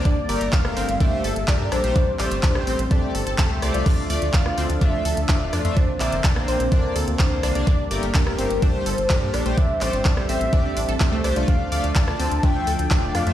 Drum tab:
CC |----------------|----------------|x---------------|----------------|
HH |x-oxx-oxx-oxx-ox|x-oxx-oxx-oxx-ox|x-oxx-oxx-oxx-ox|x-oxx-oxx-oxx-ox|
CP |----x-------x---|--x-x-------x---|----x-------x---|--x-x-------x---|
SD |-----r--------r-|-----r--------r-|-----r--------r-|-----r--------r-|
BD |o---o---o---o---|o---o---o---o---|o---o---o---o---|o---o---o---o---|

CC |----------------|----------------|----------------|
HH |x-oxx-oxx-oxx-ox|x-oxx-oxx-oxx-ox|x-oxx-oxx-oxx-ox|
CP |----x-------x---|--x-x-------x---|----x-------x---|
SD |-----r--------r-|-----r--------r-|-----r--------r-|
BD |o---o---o---o---|o---o---o---o---|o---o---o---o---|